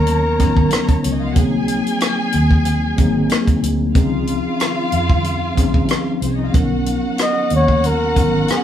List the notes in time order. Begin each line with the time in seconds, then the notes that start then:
Already playing: D#2 F#3 B3 C#4 D#4 A#4 C#5 A#5
0.07 closed hi-hat
0.38 G#1 F#3 B3 C#4 D#4 A#4, kick, cross-stick, closed hi-hat
0.57 kick
0.70 cross-stick, closed hi-hat
0.88 kick, closed hi-hat
1.04 C#2 C#4 C#5, closed hi-hat
1.13 D#4 D#5
1.22 F4 F5
1.29 F#4 F#5
1.35 C2 F#3 A#3 B3 D#4 G#4 G#5, kick, closed hi-hat
1.43 C4
1.68 closed hi-hat
1.86 closed hi-hat
2.00 cross-stick, closed hi-hat
2.32 D#2, closed hi-hat
2.51 kick
2.65 closed hi-hat
2.96 G#1 F#3 A#3 C4 D#4 G#4, kick, closed hi-hat
3.29 cross-stick, closed hi-hat
3.47 kick, closed hi-hat
3.63 D2, closed hi-hat
3.93 C#2 F3 C4 C#4 D#4 F4 G#4 F5, kick, closed hi-hat
4.27 closed hi-hat
4.60 cross-stick, closed hi-hat
4.92 F2, closed hi-hat
5.10 kick
5.24 closed hi-hat
5.55 A#1 F3 C4 C#4 D#4 G#4, kick, closed hi-hat
5.59 cross-stick
5.74 kick
5.88 cross-stick, closed hi-hat
6.22 C2 C4 C5, closed hi-hat
6.29 C#4 C#5
6.37 D#4 D#5
6.45 F4 F5
6.52 B1 F#3 B3 C#4 D4 F#4 A#4 F#5, kick, closed hi-hat
6.61 D#4
6.86 closed hi-hat
7.18 cross-stick, closed hi-hat
7.22 D#5
7.50 D#2, closed hi-hat
7.55 C#5
7.68 kick
7.84 A#4, closed hi-hat
8.15 G#1 F#3 B3 C#4 D#4 A#4, kick, cross-stick, closed hi-hat
8.48 G#4, cross-stick, closed hi-hat